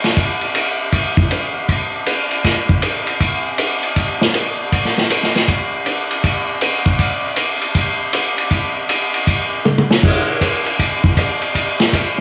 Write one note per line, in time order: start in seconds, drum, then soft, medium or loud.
0.04 snare soft
0.04 ride soft
0.17 kick soft
0.17 ride medium
0.41 ride soft
0.55 hi-hat pedal soft
0.55 ride medium
0.92 kick soft
0.92 ride medium
1.17 kick medium
1.31 hi-hat pedal medium
1.31 ride medium
1.69 kick soft
1.69 ride medium
2.06 hi-hat pedal medium
2.06 ride medium
2.31 ride soft
2.45 kick soft
2.45 snare soft
2.45 ride medium
2.69 kick medium
2.82 hi-hat pedal medium
2.82 ride medium
3.07 ride soft
3.20 kick soft
3.20 ride medium
3.58 hi-hat pedal medium
3.58 ride medium
3.83 ride soft
3.96 kick soft
3.96 ride medium
4.21 snare medium
4.34 hi-hat pedal medium
4.34 ride medium
4.72 kick soft
4.72 ride medium
4.85 snare soft
4.98 snare soft
5.10 hi-hat pedal medium
5.10 ride medium
5.23 snare soft
5.35 snare soft
5.35 ride soft
5.48 kick soft
5.48 ride medium
5.86 hi-hat pedal soft
5.86 ride medium
6.11 ride soft
6.24 kick soft
6.24 ride medium
6.61 hi-hat pedal medium
6.61 ride medium
6.85 kick soft
6.85 ride soft
6.99 kick soft
6.99 ride medium
7.36 hi-hat pedal medium
7.36 ride medium
7.61 ride soft
7.75 kick soft
7.75 ride medium
8.13 hi-hat pedal medium
8.13 ride medium
8.38 ride soft
8.51 kick soft
8.51 ride medium
8.89 hi-hat pedal soft
8.89 ride medium
9.14 ride soft
9.27 kick soft
9.27 ride medium
9.65 hi-hat pedal medium
9.65 mid tom soft
9.78 mid tom medium
9.91 snare medium
10.03 kick medium
10.03 crash medium
10.41 kick soft
10.41 hi-hat pedal medium
10.41 ride medium
10.66 ride soft
10.79 kick soft
10.79 ride medium
11.04 kick medium
11.17 kick soft
11.17 hi-hat pedal medium
11.17 ride medium
11.42 ride soft
11.55 kick soft
11.55 ride medium
11.80 snare medium
11.80 ride soft
11.93 kick soft
11.93 hi-hat pedal medium
11.93 ride medium